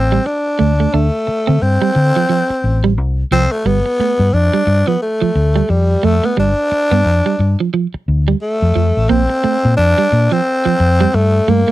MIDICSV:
0, 0, Header, 1, 6, 480
1, 0, Start_track
1, 0, Tempo, 680272
1, 661, Time_signature, 4, 2, 24, 8
1, 8267, End_track
2, 0, Start_track
2, 0, Title_t, "Tenor saxophone"
2, 0, Program_c, 0, 66
2, 0, Note_on_c, 0, 60, 95
2, 182, Note_on_c, 0, 62, 92
2, 192, Note_off_c, 0, 60, 0
2, 660, Note_on_c, 0, 57, 89
2, 671, Note_off_c, 0, 62, 0
2, 1145, Note_on_c, 0, 60, 99
2, 1155, Note_off_c, 0, 57, 0
2, 2102, Note_off_c, 0, 60, 0
2, 2343, Note_on_c, 0, 60, 108
2, 2479, Note_on_c, 0, 57, 92
2, 2490, Note_off_c, 0, 60, 0
2, 2586, Note_on_c, 0, 59, 96
2, 2596, Note_off_c, 0, 57, 0
2, 3058, Note_on_c, 0, 62, 108
2, 3068, Note_off_c, 0, 59, 0
2, 3438, Note_on_c, 0, 59, 89
2, 3449, Note_off_c, 0, 62, 0
2, 3537, Note_off_c, 0, 59, 0
2, 3541, Note_on_c, 0, 57, 86
2, 4019, Note_on_c, 0, 55, 84
2, 4030, Note_off_c, 0, 57, 0
2, 4270, Note_on_c, 0, 57, 95
2, 4280, Note_off_c, 0, 55, 0
2, 4410, Note_on_c, 0, 59, 85
2, 4421, Note_off_c, 0, 57, 0
2, 4502, Note_off_c, 0, 59, 0
2, 4510, Note_on_c, 0, 62, 106
2, 5436, Note_off_c, 0, 62, 0
2, 5936, Note_on_c, 0, 57, 90
2, 6418, Note_on_c, 0, 60, 101
2, 6428, Note_off_c, 0, 57, 0
2, 6887, Note_off_c, 0, 60, 0
2, 6891, Note_on_c, 0, 62, 107
2, 7282, Note_on_c, 0, 60, 100
2, 7292, Note_off_c, 0, 62, 0
2, 7866, Note_on_c, 0, 57, 95
2, 7877, Note_off_c, 0, 60, 0
2, 8105, Note_on_c, 0, 58, 100
2, 8116, Note_off_c, 0, 57, 0
2, 8267, Note_off_c, 0, 58, 0
2, 8267, End_track
3, 0, Start_track
3, 0, Title_t, "Clean electric guitar"
3, 0, Program_c, 1, 27
3, 85, Note_on_c, 1, 55, 76
3, 144, Note_off_c, 1, 55, 0
3, 415, Note_on_c, 1, 57, 82
3, 505, Note_off_c, 1, 57, 0
3, 564, Note_on_c, 1, 57, 63
3, 623, Note_off_c, 1, 57, 0
3, 661, Note_on_c, 1, 62, 84
3, 749, Note_off_c, 1, 62, 0
3, 1039, Note_on_c, 1, 60, 83
3, 1100, Note_off_c, 1, 60, 0
3, 1281, Note_on_c, 1, 55, 90
3, 1341, Note_off_c, 1, 55, 0
3, 1526, Note_on_c, 1, 53, 72
3, 1584, Note_off_c, 1, 53, 0
3, 1619, Note_on_c, 1, 53, 79
3, 1707, Note_off_c, 1, 53, 0
3, 2004, Note_on_c, 1, 55, 94
3, 2062, Note_off_c, 1, 55, 0
3, 2344, Note_on_c, 1, 53, 79
3, 2430, Note_off_c, 1, 53, 0
3, 2581, Note_on_c, 1, 55, 82
3, 2669, Note_off_c, 1, 55, 0
3, 2825, Note_on_c, 1, 57, 62
3, 2911, Note_off_c, 1, 57, 0
3, 3200, Note_on_c, 1, 55, 81
3, 3259, Note_off_c, 1, 55, 0
3, 3440, Note_on_c, 1, 53, 73
3, 3500, Note_off_c, 1, 53, 0
3, 3680, Note_on_c, 1, 53, 72
3, 3739, Note_off_c, 1, 53, 0
3, 3920, Note_on_c, 1, 55, 81
3, 3980, Note_off_c, 1, 55, 0
3, 4256, Note_on_c, 1, 57, 81
3, 4345, Note_off_c, 1, 57, 0
3, 4400, Note_on_c, 1, 57, 65
3, 4459, Note_off_c, 1, 57, 0
3, 4495, Note_on_c, 1, 55, 79
3, 4584, Note_off_c, 1, 55, 0
3, 4878, Note_on_c, 1, 59, 82
3, 4938, Note_off_c, 1, 59, 0
3, 5122, Note_on_c, 1, 55, 79
3, 5181, Note_off_c, 1, 55, 0
3, 5365, Note_on_c, 1, 53, 70
3, 5423, Note_off_c, 1, 53, 0
3, 5459, Note_on_c, 1, 53, 76
3, 5547, Note_off_c, 1, 53, 0
3, 5841, Note_on_c, 1, 55, 90
3, 5900, Note_off_c, 1, 55, 0
3, 6177, Note_on_c, 1, 53, 69
3, 6266, Note_off_c, 1, 53, 0
3, 6416, Note_on_c, 1, 58, 93
3, 6505, Note_off_c, 1, 58, 0
3, 6659, Note_on_c, 1, 57, 69
3, 6747, Note_off_c, 1, 57, 0
3, 7043, Note_on_c, 1, 55, 89
3, 7102, Note_off_c, 1, 55, 0
3, 7279, Note_on_c, 1, 53, 71
3, 7339, Note_off_c, 1, 53, 0
3, 7518, Note_on_c, 1, 53, 76
3, 7578, Note_off_c, 1, 53, 0
3, 7765, Note_on_c, 1, 55, 90
3, 7823, Note_off_c, 1, 55, 0
3, 8101, Note_on_c, 1, 57, 81
3, 8189, Note_off_c, 1, 57, 0
3, 8241, Note_on_c, 1, 57, 72
3, 8267, Note_off_c, 1, 57, 0
3, 8267, End_track
4, 0, Start_track
4, 0, Title_t, "Fingered electric bass"
4, 0, Program_c, 2, 33
4, 0, Note_on_c, 2, 33, 99
4, 121, Note_off_c, 2, 33, 0
4, 426, Note_on_c, 2, 38, 77
4, 601, Note_off_c, 2, 38, 0
4, 661, Note_on_c, 2, 38, 90
4, 767, Note_off_c, 2, 38, 0
4, 1050, Note_on_c, 2, 50, 92
4, 1119, Note_off_c, 2, 50, 0
4, 1144, Note_on_c, 2, 43, 92
4, 1249, Note_off_c, 2, 43, 0
4, 1383, Note_on_c, 2, 50, 99
4, 1488, Note_off_c, 2, 50, 0
4, 1862, Note_on_c, 2, 33, 81
4, 2101, Note_off_c, 2, 33, 0
4, 2101, Note_on_c, 2, 36, 88
4, 2277, Note_off_c, 2, 36, 0
4, 2338, Note_on_c, 2, 36, 78
4, 2444, Note_off_c, 2, 36, 0
4, 2578, Note_on_c, 2, 31, 95
4, 2684, Note_off_c, 2, 31, 0
4, 2960, Note_on_c, 2, 43, 92
4, 3032, Note_off_c, 2, 43, 0
4, 3058, Note_on_c, 2, 41, 94
4, 3164, Note_off_c, 2, 41, 0
4, 3295, Note_on_c, 2, 43, 102
4, 3402, Note_off_c, 2, 43, 0
4, 3778, Note_on_c, 2, 38, 98
4, 3955, Note_off_c, 2, 38, 0
4, 4020, Note_on_c, 2, 41, 91
4, 4196, Note_off_c, 2, 41, 0
4, 4263, Note_on_c, 2, 41, 85
4, 4367, Note_off_c, 2, 41, 0
4, 4500, Note_on_c, 2, 31, 107
4, 4605, Note_off_c, 2, 31, 0
4, 4881, Note_on_c, 2, 43, 93
4, 4952, Note_off_c, 2, 43, 0
4, 4978, Note_on_c, 2, 41, 82
4, 5084, Note_off_c, 2, 41, 0
4, 5217, Note_on_c, 2, 43, 90
4, 5324, Note_off_c, 2, 43, 0
4, 5702, Note_on_c, 2, 38, 81
4, 5877, Note_off_c, 2, 38, 0
4, 6084, Note_on_c, 2, 41, 83
4, 6154, Note_off_c, 2, 41, 0
4, 6181, Note_on_c, 2, 41, 75
4, 6286, Note_off_c, 2, 41, 0
4, 6329, Note_on_c, 2, 33, 80
4, 6397, Note_off_c, 2, 33, 0
4, 6425, Note_on_c, 2, 34, 107
4, 6529, Note_off_c, 2, 34, 0
4, 6809, Note_on_c, 2, 46, 103
4, 6877, Note_off_c, 2, 46, 0
4, 6902, Note_on_c, 2, 41, 101
4, 7007, Note_off_c, 2, 41, 0
4, 7145, Note_on_c, 2, 46, 102
4, 7249, Note_off_c, 2, 46, 0
4, 7620, Note_on_c, 2, 41, 82
4, 7797, Note_off_c, 2, 41, 0
4, 7863, Note_on_c, 2, 43, 90
4, 8039, Note_off_c, 2, 43, 0
4, 8103, Note_on_c, 2, 43, 83
4, 8208, Note_off_c, 2, 43, 0
4, 8267, End_track
5, 0, Start_track
5, 0, Title_t, "Muted clean electric guitar strokes"
5, 184, Note_on_c, 9, 29, 43
5, 255, Note_off_c, 9, 29, 0
5, 898, Note_on_c, 9, 29, 40
5, 969, Note_off_c, 9, 29, 0
5, 1376, Note_on_c, 9, 29, 44
5, 1446, Note_off_c, 9, 29, 0
5, 1767, Note_on_c, 9, 29, 42
5, 1838, Note_off_c, 9, 29, 0
5, 2721, Note_on_c, 9, 29, 51
5, 2792, Note_off_c, 9, 29, 0
5, 3297, Note_on_c, 9, 29, 45
5, 3368, Note_off_c, 9, 29, 0
5, 3779, Note_on_c, 9, 29, 41
5, 3850, Note_off_c, 9, 29, 0
5, 4014, Note_on_c, 9, 29, 44
5, 4085, Note_off_c, 9, 29, 0
5, 4739, Note_on_c, 9, 29, 42
5, 4810, Note_off_c, 9, 29, 0
5, 5225, Note_on_c, 9, 29, 45
5, 5295, Note_off_c, 9, 29, 0
5, 5604, Note_on_c, 9, 29, 40
5, 5675, Note_off_c, 9, 29, 0
5, 6559, Note_on_c, 9, 29, 48
5, 6629, Note_off_c, 9, 29, 0
5, 7141, Note_on_c, 9, 29, 47
5, 7212, Note_off_c, 9, 29, 0
5, 7621, Note_on_c, 9, 29, 46
5, 7692, Note_off_c, 9, 29, 0
5, 7861, Note_on_c, 9, 29, 50
5, 7932, Note_off_c, 9, 29, 0
5, 8267, End_track
6, 0, Start_track
6, 0, Title_t, "Muted fingered electric bass strokes"
6, 905, Note_on_c, 9, 29, 42
6, 975, Note_off_c, 9, 29, 0
6, 1764, Note_on_c, 9, 29, 44
6, 1835, Note_off_c, 9, 29, 0
6, 2820, Note_on_c, 9, 29, 47
6, 2890, Note_off_c, 9, 29, 0
6, 3686, Note_on_c, 9, 29, 44
6, 3757, Note_off_c, 9, 29, 0
6, 4740, Note_on_c, 9, 29, 48
6, 4811, Note_off_c, 9, 29, 0
6, 5604, Note_on_c, 9, 29, 43
6, 5675, Note_off_c, 9, 29, 0
6, 6664, Note_on_c, 9, 29, 52
6, 6734, Note_off_c, 9, 29, 0
6, 7526, Note_on_c, 9, 29, 50
6, 7596, Note_off_c, 9, 29, 0
6, 8267, End_track
0, 0, End_of_file